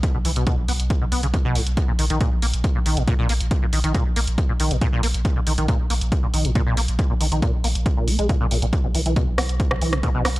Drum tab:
HH |x-oxx-oxx-oxx-ox|x-oxx-oxx-oxx-ox|x-oxx-oxx-oxx-ox|x-oxx-oxx-oxx-ox|
SD |----------------|----------------|----------------|----------------|
BD |o---o---o---o---|o---o---o---o---|o---o---o---o---|o---o---o---o---|

HH |x-oxx-oxx-oxx-ox|x-oxx-oxx-oxx-ox|
SD |----------------|------r--r-r--r-|
BD |o---o---o---o---|o---o---o---o---|